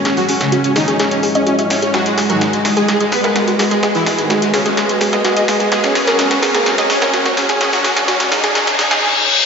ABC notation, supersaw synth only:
X:1
M:4/4
L:1/16
Q:1/4=127
K:G#m
V:1 name="Supersaw synth"
C [F,F] C z C C [D,D] C C C z C C z C C | [F,F] G, G, [F,F] G, G, G, [G,G] G, G, [B,B] G, G, z G, G, | G, [E,E] G, z G, G, [C,C] G, G, G, z G, G, z G, G, | [G,G] C C [G,G] C C C [A,A] C C [Cc] C C z C C |
C [F,F] C z C C [D,D] C C C z C z4 |]